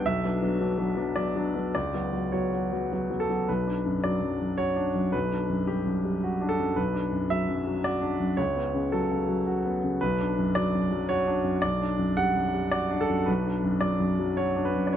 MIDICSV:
0, 0, Header, 1, 2, 480
1, 0, Start_track
1, 0, Key_signature, 2, "minor"
1, 0, Tempo, 567644
1, 37, Time_signature, 3, 2, 24, 8
1, 3878, Tempo, 541028
1, 10118, Tempo, 553506
1, 13022, End_track
2, 0, Start_track
2, 0, Title_t, "Grand piano"
2, 0, Program_c, 0, 0
2, 0, Control_c, 0, 64, 127
2, 48, Note_on_c, 0, 76, 89
2, 54, Note_on_c, 0, 35, 58
2, 55, Control_c, 0, 64, 0
2, 180, Control_c, 0, 64, 127
2, 194, Note_off_c, 0, 35, 0
2, 208, Note_on_c, 0, 54, 36
2, 212, Note_on_c, 0, 59, 39
2, 216, Note_on_c, 0, 62, 42
2, 339, Note_off_c, 0, 54, 0
2, 341, Note_off_c, 0, 59, 0
2, 343, Note_off_c, 0, 62, 0
2, 354, Note_on_c, 0, 54, 44
2, 360, Note_on_c, 0, 59, 40
2, 363, Note_on_c, 0, 62, 42
2, 490, Note_off_c, 0, 54, 0
2, 493, Note_off_c, 0, 59, 0
2, 495, Note_off_c, 0, 62, 0
2, 509, Note_on_c, 0, 54, 38
2, 512, Note_on_c, 0, 59, 41
2, 517, Note_on_c, 0, 62, 45
2, 648, Note_off_c, 0, 54, 0
2, 649, Note_off_c, 0, 59, 0
2, 652, Note_off_c, 0, 62, 0
2, 662, Note_on_c, 0, 54, 40
2, 667, Note_on_c, 0, 59, 36
2, 671, Note_on_c, 0, 62, 39
2, 802, Note_off_c, 0, 54, 0
2, 805, Note_off_c, 0, 59, 0
2, 809, Note_off_c, 0, 62, 0
2, 815, Note_on_c, 0, 54, 39
2, 818, Note_on_c, 0, 59, 35
2, 823, Note_on_c, 0, 62, 42
2, 961, Note_off_c, 0, 54, 0
2, 963, Note_off_c, 0, 59, 0
2, 966, Note_off_c, 0, 62, 0
2, 977, Note_on_c, 0, 74, 67
2, 985, Note_off_c, 0, 76, 0
2, 985, Note_on_c, 0, 54, 41
2, 986, Note_on_c, 0, 59, 38
2, 991, Note_on_c, 0, 62, 42
2, 1128, Note_off_c, 0, 54, 0
2, 1129, Note_off_c, 0, 59, 0
2, 1132, Note_off_c, 0, 62, 0
2, 1148, Note_on_c, 0, 54, 43
2, 1153, Note_on_c, 0, 59, 43
2, 1156, Note_on_c, 0, 62, 48
2, 1292, Note_off_c, 0, 54, 0
2, 1295, Note_off_c, 0, 59, 0
2, 1296, Note_off_c, 0, 62, 0
2, 1310, Note_on_c, 0, 54, 34
2, 1317, Note_on_c, 0, 59, 34
2, 1319, Note_on_c, 0, 62, 38
2, 1457, Note_off_c, 0, 54, 0
2, 1461, Note_off_c, 0, 59, 0
2, 1462, Note_off_c, 0, 62, 0
2, 1464, Note_off_c, 0, 74, 0
2, 1477, Note_on_c, 0, 74, 72
2, 1483, Note_on_c, 0, 37, 50
2, 1489, Control_c, 0, 64, 0
2, 1619, Control_c, 0, 64, 127
2, 1639, Note_off_c, 0, 37, 0
2, 1640, Note_on_c, 0, 54, 36
2, 1647, Note_on_c, 0, 59, 33
2, 1647, Note_on_c, 0, 66, 35
2, 1787, Note_off_c, 0, 54, 0
2, 1790, Note_off_c, 0, 59, 0
2, 1793, Note_off_c, 0, 66, 0
2, 1800, Note_on_c, 0, 54, 34
2, 1802, Note_on_c, 0, 59, 34
2, 1805, Note_on_c, 0, 66, 36
2, 1951, Note_off_c, 0, 54, 0
2, 1952, Note_off_c, 0, 59, 0
2, 1954, Note_off_c, 0, 66, 0
2, 1963, Note_on_c, 0, 73, 52
2, 1973, Note_off_c, 0, 74, 0
2, 1973, Note_on_c, 0, 54, 35
2, 1976, Note_on_c, 0, 59, 38
2, 1981, Note_on_c, 0, 66, 35
2, 2120, Note_off_c, 0, 54, 0
2, 2121, Note_off_c, 0, 59, 0
2, 2124, Note_off_c, 0, 66, 0
2, 2147, Note_on_c, 0, 54, 31
2, 2151, Note_on_c, 0, 59, 35
2, 2154, Note_on_c, 0, 66, 37
2, 2288, Note_off_c, 0, 54, 0
2, 2290, Note_off_c, 0, 59, 0
2, 2292, Note_off_c, 0, 66, 0
2, 2305, Note_on_c, 0, 54, 33
2, 2305, Note_on_c, 0, 59, 35
2, 2309, Note_on_c, 0, 66, 38
2, 2446, Note_off_c, 0, 54, 0
2, 2446, Note_off_c, 0, 59, 0
2, 2449, Note_off_c, 0, 66, 0
2, 2455, Note_off_c, 0, 73, 0
2, 2473, Note_on_c, 0, 54, 38
2, 2474, Note_on_c, 0, 59, 39
2, 2481, Note_on_c, 0, 66, 40
2, 2609, Note_off_c, 0, 54, 0
2, 2611, Note_off_c, 0, 59, 0
2, 2615, Note_off_c, 0, 66, 0
2, 2622, Note_on_c, 0, 54, 38
2, 2628, Note_on_c, 0, 59, 38
2, 2632, Note_on_c, 0, 66, 40
2, 2705, Note_on_c, 0, 69, 61
2, 2765, Note_off_c, 0, 54, 0
2, 2769, Note_off_c, 0, 59, 0
2, 2771, Note_off_c, 0, 66, 0
2, 2790, Note_on_c, 0, 54, 35
2, 2793, Note_on_c, 0, 66, 38
2, 2796, Note_on_c, 0, 59, 35
2, 2928, Note_off_c, 0, 54, 0
2, 2930, Note_off_c, 0, 66, 0
2, 2932, Note_off_c, 0, 59, 0
2, 2941, Note_off_c, 0, 69, 0
2, 2947, Note_on_c, 0, 71, 57
2, 2951, Note_on_c, 0, 35, 49
2, 2953, Control_c, 0, 64, 0
2, 3105, Note_on_c, 0, 62, 35
2, 3106, Control_c, 0, 64, 127
2, 3265, Note_on_c, 0, 42, 35
2, 3353, Note_off_c, 0, 62, 0
2, 3412, Note_on_c, 0, 74, 66
2, 3416, Note_off_c, 0, 71, 0
2, 3419, Note_on_c, 0, 54, 39
2, 3511, Note_off_c, 0, 42, 0
2, 3569, Note_on_c, 0, 42, 33
2, 3665, Note_off_c, 0, 54, 0
2, 3733, Note_on_c, 0, 54, 36
2, 3818, Note_off_c, 0, 42, 0
2, 3869, Note_on_c, 0, 73, 77
2, 3876, Note_on_c, 0, 66, 40
2, 3880, Note_off_c, 0, 74, 0
2, 3982, Note_off_c, 0, 54, 0
2, 4034, Note_on_c, 0, 62, 43
2, 4138, Note_off_c, 0, 66, 0
2, 4202, Note_on_c, 0, 42, 36
2, 4297, Note_off_c, 0, 62, 0
2, 4337, Note_off_c, 0, 35, 0
2, 4355, Note_on_c, 0, 71, 70
2, 4360, Note_off_c, 0, 73, 0
2, 4364, Note_off_c, 0, 42, 0
2, 4366, Note_on_c, 0, 35, 46
2, 4381, Control_c, 0, 64, 0
2, 4508, Control_c, 0, 64, 127
2, 4519, Note_on_c, 0, 62, 37
2, 4684, Note_on_c, 0, 42, 37
2, 4780, Note_off_c, 0, 62, 0
2, 4842, Note_on_c, 0, 67, 55
2, 4844, Note_off_c, 0, 71, 0
2, 4849, Note_on_c, 0, 55, 40
2, 4945, Note_off_c, 0, 42, 0
2, 5015, Note_on_c, 0, 42, 37
2, 5108, Note_off_c, 0, 55, 0
2, 5174, Note_on_c, 0, 55, 38
2, 5270, Note_off_c, 0, 42, 0
2, 5330, Note_off_c, 0, 67, 0
2, 5342, Note_on_c, 0, 66, 46
2, 5430, Note_off_c, 0, 55, 0
2, 5500, Note_on_c, 0, 62, 47
2, 5565, Note_on_c, 0, 69, 68
2, 5594, Note_off_c, 0, 66, 0
2, 5659, Note_on_c, 0, 42, 38
2, 5752, Note_off_c, 0, 62, 0
2, 5777, Note_off_c, 0, 35, 0
2, 5809, Note_off_c, 0, 69, 0
2, 5809, Note_on_c, 0, 71, 63
2, 5812, Note_on_c, 0, 35, 47
2, 5816, Note_off_c, 0, 42, 0
2, 5831, Control_c, 0, 64, 0
2, 5966, Control_c, 0, 64, 127
2, 5968, Note_on_c, 0, 62, 39
2, 6129, Note_on_c, 0, 42, 37
2, 6226, Note_off_c, 0, 62, 0
2, 6288, Note_on_c, 0, 76, 83
2, 6290, Note_off_c, 0, 71, 0
2, 6295, Note_on_c, 0, 54, 40
2, 6386, Note_off_c, 0, 42, 0
2, 6449, Note_on_c, 0, 42, 37
2, 6549, Note_off_c, 0, 54, 0
2, 6612, Note_on_c, 0, 54, 39
2, 6706, Note_off_c, 0, 42, 0
2, 6767, Note_on_c, 0, 74, 71
2, 6769, Note_off_c, 0, 76, 0
2, 6771, Note_on_c, 0, 66, 44
2, 6866, Note_off_c, 0, 54, 0
2, 6921, Note_on_c, 0, 62, 46
2, 7024, Note_off_c, 0, 66, 0
2, 7084, Note_on_c, 0, 42, 41
2, 7177, Note_off_c, 0, 62, 0
2, 7208, Note_off_c, 0, 35, 0
2, 7234, Note_on_c, 0, 73, 74
2, 7242, Note_off_c, 0, 74, 0
2, 7243, Note_off_c, 0, 42, 0
2, 7247, Note_on_c, 0, 37, 49
2, 7259, Control_c, 0, 64, 0
2, 7405, Note_on_c, 0, 59, 40
2, 7413, Control_c, 0, 64, 127
2, 7567, Note_on_c, 0, 49, 41
2, 7656, Note_off_c, 0, 59, 0
2, 7713, Note_off_c, 0, 73, 0
2, 7725, Note_on_c, 0, 69, 64
2, 7735, Note_on_c, 0, 54, 44
2, 7818, Note_off_c, 0, 49, 0
2, 7894, Note_on_c, 0, 49, 41
2, 7982, Note_off_c, 0, 54, 0
2, 8047, Note_on_c, 0, 54, 44
2, 8142, Note_off_c, 0, 49, 0
2, 8202, Note_off_c, 0, 69, 0
2, 8209, Note_on_c, 0, 66, 49
2, 8300, Note_off_c, 0, 54, 0
2, 8377, Note_on_c, 0, 59, 48
2, 8462, Note_off_c, 0, 66, 0
2, 8535, Note_on_c, 0, 49, 42
2, 8626, Note_off_c, 0, 59, 0
2, 8647, Note_off_c, 0, 37, 0
2, 8688, Note_off_c, 0, 49, 0
2, 8690, Note_on_c, 0, 71, 80
2, 8699, Control_c, 0, 64, 0
2, 8701, Note_on_c, 0, 35, 56
2, 8816, Control_c, 0, 64, 127
2, 8857, Note_on_c, 0, 62, 43
2, 9024, Note_on_c, 0, 42, 40
2, 9103, Note_off_c, 0, 62, 0
2, 9163, Note_off_c, 0, 71, 0
2, 9170, Note_on_c, 0, 74, 83
2, 9182, Note_on_c, 0, 54, 48
2, 9267, Note_off_c, 0, 42, 0
2, 9345, Note_on_c, 0, 42, 43
2, 9426, Note_off_c, 0, 54, 0
2, 9499, Note_on_c, 0, 54, 46
2, 9589, Note_off_c, 0, 42, 0
2, 9645, Note_off_c, 0, 74, 0
2, 9647, Note_on_c, 0, 73, 84
2, 9657, Note_on_c, 0, 66, 51
2, 9746, Note_off_c, 0, 54, 0
2, 9809, Note_on_c, 0, 62, 51
2, 9906, Note_off_c, 0, 66, 0
2, 9960, Note_on_c, 0, 42, 45
2, 10062, Note_off_c, 0, 62, 0
2, 10096, Note_off_c, 0, 35, 0
2, 10116, Note_on_c, 0, 74, 83
2, 10121, Note_off_c, 0, 42, 0
2, 10125, Note_off_c, 0, 73, 0
2, 10127, Note_on_c, 0, 35, 54
2, 10140, Control_c, 0, 64, 0
2, 10281, Control_c, 0, 64, 127
2, 10285, Note_on_c, 0, 62, 45
2, 10438, Note_on_c, 0, 42, 43
2, 10537, Note_off_c, 0, 62, 0
2, 10594, Note_on_c, 0, 78, 88
2, 10595, Note_off_c, 0, 74, 0
2, 10599, Note_on_c, 0, 55, 49
2, 10693, Note_off_c, 0, 42, 0
2, 10769, Note_on_c, 0, 42, 43
2, 10853, Note_off_c, 0, 55, 0
2, 10915, Note_on_c, 0, 55, 44
2, 11018, Note_off_c, 0, 42, 0
2, 11068, Note_on_c, 0, 74, 85
2, 11073, Note_off_c, 0, 78, 0
2, 11077, Note_on_c, 0, 66, 49
2, 11169, Note_off_c, 0, 55, 0
2, 11236, Note_on_c, 0, 62, 52
2, 11309, Note_off_c, 0, 74, 0
2, 11320, Note_on_c, 0, 69, 74
2, 11330, Note_off_c, 0, 66, 0
2, 11397, Note_on_c, 0, 42, 42
2, 11488, Note_off_c, 0, 62, 0
2, 11518, Note_off_c, 0, 35, 0
2, 11540, Note_on_c, 0, 71, 64
2, 11553, Note_off_c, 0, 42, 0
2, 11554, Note_off_c, 0, 69, 0
2, 11555, Note_on_c, 0, 35, 54
2, 11568, Control_c, 0, 64, 0
2, 11710, Note_on_c, 0, 62, 39
2, 11725, Control_c, 0, 64, 127
2, 11862, Note_on_c, 0, 42, 42
2, 11963, Note_off_c, 0, 62, 0
2, 12014, Note_on_c, 0, 74, 72
2, 12018, Note_on_c, 0, 54, 40
2, 12021, Note_off_c, 0, 71, 0
2, 12119, Note_off_c, 0, 42, 0
2, 12180, Note_on_c, 0, 42, 37
2, 12279, Note_off_c, 0, 54, 0
2, 12349, Note_on_c, 0, 54, 40
2, 12441, Note_off_c, 0, 42, 0
2, 12503, Note_off_c, 0, 74, 0
2, 12503, Note_on_c, 0, 73, 73
2, 12513, Note_on_c, 0, 66, 41
2, 12607, Note_off_c, 0, 54, 0
2, 12667, Note_on_c, 0, 62, 44
2, 12746, Note_on_c, 0, 71, 65
2, 12750, Note_off_c, 0, 73, 0
2, 12771, Note_off_c, 0, 66, 0
2, 12832, Note_on_c, 0, 42, 35
2, 12932, Note_off_c, 0, 62, 0
2, 12934, Note_off_c, 0, 71, 0
2, 12936, Note_on_c, 0, 74, 49
2, 12968, Note_off_c, 0, 35, 0
2, 12987, Note_on_c, 0, 73, 64
2, 13000, Note_off_c, 0, 42, 0
2, 13000, Note_off_c, 0, 74, 0
2, 13017, Control_c, 0, 64, 0
2, 13022, Note_off_c, 0, 73, 0
2, 13022, End_track
0, 0, End_of_file